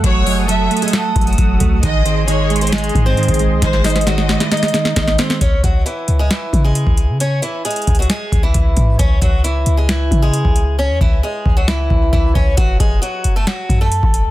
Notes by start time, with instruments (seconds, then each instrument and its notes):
Already playing: clean electric guitar A3, analog synth pad A4 F#5
0.04 808-style bass F#1, clean electric guitar F#3, steel-string acoustic guitar F#3 F#4, violin section C#5, analog synth pad D#6, kick, closed hi-hat
0.26 clean electric guitar F#3, steel-string acoustic guitar G#3 G#4, open hi-hat
0.48 clean electric guitar F#3, steel-string acoustic guitar A3 A4, violin section E5, closed hi-hat
0.71 clean electric guitar A3, closed hi-hat
0.77 closed hi-hat
0.82 steel-string acoustic guitar G#3 G#4, closed hi-hat
0.88 closed hi-hat
0.93 steel-string acoustic guitar A3 A4, snare, closed hi-hat
1.16 808-style bass F#1, clean electric guitar F#3, kick, closed hi-hat
1.21 closed hi-hat
1.27 steel-string acoustic guitar F#3 F#4, closed hi-hat
1.33 closed hi-hat
1.38 808-style bass F#1, clean electric guitar F#3, kick, closed hi-hat
1.60 808-style bass C#2, clean electric guitar A3, kick, closed hi-hat
1.83 808-style bass G#1, clean electric guitar D#3, steel-string acoustic guitar G#3 G#4, analog synth pad G#4 D#5 C6, violin section D#5, kick, closed hi-hat
2.05 clean electric guitar D#3, steel-string acoustic guitar C4 C5, closed hi-hat
2.28 clean electric guitar D#3, steel-string acoustic guitar G#3 G#4, violin section C#5, closed hi-hat
2.50 clean electric guitar G#3, closed hi-hat
2.56 closed hi-hat
2.61 steel-string acoustic guitar C4 C5, closed hi-hat
2.67 closed hi-hat
2.72 steel-string acoustic guitar G#3 G#4, snare, closed hi-hat
2.78 closed hi-hat
2.84 closed hi-hat
2.89 closed hi-hat
2.95 808-style bass G#2, clean electric guitar D#3, kick, closed hi-hat
3.06 steel-string acoustic guitar C4 C5
3.17 clean electric guitar D#3, closed hi-hat
3.23 closed hi-hat
3.28 808-style bass G#1, kick, closed hi-hat
3.34 closed hi-hat
3.39 clean electric guitar G#3, closed hi-hat
3.51 808-style bass C2
3.62 808-style bass G#1, clean electric guitar D#3, steel-string acoustic guitar G#3 G#4, violin section C5, kick, snare, closed hi-hat
3.73 snare
3.84 clean electric guitar D#3, steel-string acoustic guitar D#4 D#5, snare, closed hi-hat, open hi-hat
3.90 closed hi-hat
3.96 snare, closed hi-hat
4.01 closed hi-hat
4.07 clean electric guitar D#3, steel-string acoustic guitar F#3 F#4, violin section D#5, snare, closed hi-hat
4.18 snare
4.29 clean electric guitar G#3, snare, closed hi-hat
4.40 steel-string acoustic guitar E3 E4, snare, closed hi-hat
4.52 steel-string acoustic guitar D#4 D#5, snare, closed hi-hat
4.57 closed hi-hat
4.63 snare, closed hi-hat
4.68 closed hi-hat
4.74 clean electric guitar D#3, snare, closed hi-hat
4.85 snare
4.96 808-style bass G#1, clean electric guitar D#3, steel-string acoustic guitar D#4 D#5, kick, snare, closed hi-hat
5.08 snare
5.18 clean electric guitar G#3, steel-string acoustic guitar C4 C5, snare, closed hi-hat
5.30 snare
5.41 808-style bass C#2, steel-string acoustic guitar C#4 C#5, kick, closed hi-hat
5.64 808-style bass C#2, steel-string acoustic guitar F#3 F#4, kick, closed hi-hat
5.86 steel-string acoustic guitar E3 E4, closed hi-hat
6.08 808-style bass C#2, closed hi-hat
6.19 steel-string acoustic guitar G#3 G#4
6.31 steel-string acoustic guitar E3 E4, snare, closed hi-hat
6.53 808-style bass C#3, kick, closed hi-hat
6.64 steel-string acoustic guitar G#3 G#4
6.75 closed hi-hat
6.87 808-style bass C#2, kick
6.97 closed hi-hat
7.09 808-style bass C#3
7.20 steel-string acoustic guitar C#4 C#5, closed hi-hat
7.42 steel-string acoustic guitar E3 E4, closed hi-hat
7.65 steel-string acoustic guitar G#3 G#4, closed hi-hat
7.71 closed hi-hat
7.76 closed hi-hat
7.82 closed hi-hat
7.87 808-style bass C#2, kick, closed hi-hat
7.95 closed hi-hat
7.99 steel-string acoustic guitar F#3 F#4, closed hi-hat
8.10 steel-string acoustic guitar G#3 G#4, snare, closed hi-hat
8.32 808-style bass C#2, kick, closed hi-hat
8.43 steel-string acoustic guitar E3 E4
8.54 808-style bass C#2, kick, closed hi-hat
8.77 808-style bass G#2, kick, closed hi-hat
8.99 808-style bass C#2, steel-string acoustic guitar C#4 C#5, kick, closed hi-hat
9.21 808-style bass C#2, steel-string acoustic guitar F#3 F#4, kick, closed hi-hat
9.44 steel-string acoustic guitar E3 E4, closed hi-hat
9.66 808-style bass C#2, closed hi-hat
9.77 steel-string acoustic guitar G#3 G#4
9.89 steel-string acoustic guitar E3 E4, snare, closed hi-hat
10.11 808-style bass C#3, kick, closed hi-hat
10.22 steel-string acoustic guitar G#3 G#4
10.34 closed hi-hat
10.45 808-style bass C#2, kick
10.56 closed hi-hat
10.79 steel-string acoustic guitar C#4 C#5
10.90 808-style bass E2
11.01 808-style bass C#2, steel-string acoustic guitar E3 E4, kick
11.23 steel-string acoustic guitar G#3 G#4
11.46 808-style bass C#2, kick
11.57 steel-string acoustic guitar F#3 F#4
11.68 steel-string acoustic guitar E3 E4, snare
11.90 808-style bass C#2, kick
12.13 808-style bass C#2, steel-string acoustic guitar E3 E4, kick
12.35 808-style bass C#2, steel-string acoustic guitar C#4 C#5, kick
12.57 808-style bass F#1, steel-string acoustic guitar F#3 F#4, kick, closed hi-hat
12.80 808-style bass F#1, steel-string acoustic guitar G#3 G#4, kick, closed hi-hat
13.02 steel-string acoustic guitar F#3 F#4, closed hi-hat
13.24 808-style bass F#1, closed hi-hat
13.36 steel-string acoustic guitar A3 A4
13.47 steel-string acoustic guitar F#3 F#4, snare, closed hi-hat
13.69 808-style bass F#2, kick, closed hi-hat
13.81 steel-string acoustic guitar A3 A4
13.92 closed hi-hat
14.03 808-style bass F#1, kick
14.14 closed hi-hat
14.25 808-style bass F#2